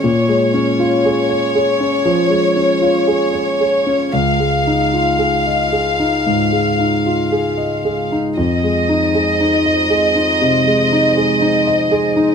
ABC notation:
X:1
M:4/4
L:1/16
Q:1/4=58
K:Fphr
V:1 name="Violin section"
d16 | f16 | e16 |]
V:2 name="Analog synth pad"
z16 | z16 | [A,Ec]16 |]
V:3 name="Grand piano"
B,, A, D F A d A D F, A, D F A d A D | D,, A, E F A e A E A,, A, E F A e A E | F,, A, E A E e A E C, A, E A E e A E |]